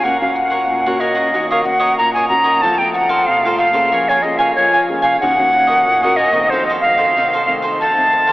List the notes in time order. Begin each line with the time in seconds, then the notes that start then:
0.03 A#2 A#3 C#4 F#4 A#4 C#5 F#5
0.21 A#3 C#4 F#4 F5
0.34 F#5, muted cavaquinho stroke
0.50 A#4 C#5 F#5
0.69 A#2
0.86 A#3 C#4 F#4 A#4 C#5 F#5
1.00 F#4 A#4 C#5 D#5 F#5
1.15 A#4 C#5 F#5
1.34 D#3 A#3 C#4 F#4 A#4 C#5 D#5
1.50 A#4 C#5 D#5 F5
1.64 A#3 C#4 F#4 F#5, muted cavaquinho stroke
1.79 A#4 C#5 D#5
1.97 A#2 F#4 A#4 C#5 D#5 A#5
2.13 C#5 D#5 G#5
2.17 A#4
2.28 A#3 C#4 F#4 A#5
2.44 A#4 C#5 D#5
2.62 F3 A3 C4 F4 A4 C5 F5 A5
2.78 A3 C4 G5
2.93 F#5, muted cavaquinho stroke
3.09 A4 C5 F5
3.26 C3 F5
3.44 A3 C4 F4 A4 C5 F5
3.58 F4 A4 C5 F5
3.73 A#3 C#4 G#4 A4 C5 F5
3.92 F3 A#4 C#5 F5 G#5
4.08 C#5 F5 G#5
4.22 A#3 C#4 G#4 D#5, muted cavaquinho stroke
4.38 C#5 F5 G#5
4.55 F3 A#4 C#5 F5 G#5
4.73 C#5 F5 G#5
4.89 A#3 C#4 G#4
5.02 C#5 F5 G#5
5.20 D#3 A#3 C#4 F#4 A#4 C#5 D#5 F#5
5.39 A#3 C#4 F#4
5.52 muted cavaquinho stroke
5.67 A#4 C#5 D#5
5.86 A#2
6.03 A#3 C#4 F#4 A#4 C#5 D#5
6.16 F#4 A#4 C#5 D#5
6.32 D#3 A3 C4 A#4 C#5 D#5
6.50 F2 D#4 A4 C5
6.54 F5
6.66 D#5 F5
6.70 A4 C5
6.81 D#3 A3 C4 F5, muted cavaquinho stroke
6.97 A4 C5 F5
7.16 C3 D#4 A4 C5 F5
7.33 A4 C5 F5
7.46 D#3 A3 C4 F5
7.62 A4 C5 F5
7.80 F2 D#4 A4 C5 F5 A5
7.98 D#3 A3 C4
8.12 muted cavaquinho stroke
8.27 A4 C5 F5